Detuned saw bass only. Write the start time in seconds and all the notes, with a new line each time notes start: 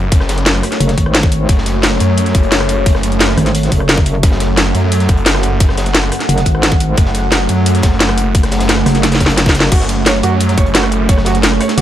Already playing: F#1
0.12 F#1
1.49 F#1
2.01 F#2
2.35 F#1
2.86 F#1
4.23 F#1
4.75 F#2
5.09 F#1
5.60 F#1
6.98 F#1
7.49 F#2
7.83 F#1
8.35 F#1
9.72 F#1
10.23 F#2
10.58 F#1
11.09 F#1